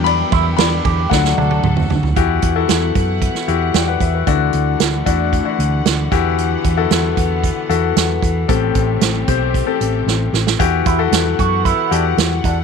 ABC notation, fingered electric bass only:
X:1
M:4/4
L:1/16
Q:1/4=114
K:Em
V:1 name="Fingered electric bass" clef=bass
E,,2 E,,2 E,,2 E,,2 D,,2 D,,2 D,,2 D,,2 | E,,2 E,,2 E,,2 F,,3 z E,,2 E,,2 E,,2 | D,,2 D,,2 D,,2 E,,3 z D,,2 D,,2 E,,2- | E,,2 E,,2 E,,2 E,,3 z E,,2 E,,2 E,,2 |
A,,,2 A,,,2 A,,,2 B,,,3 z A,,,2 A,,,2 A,,,2 | E,,2 E,,2 E,,2 F,,3 z E,,2 E,,2 E,,2 |]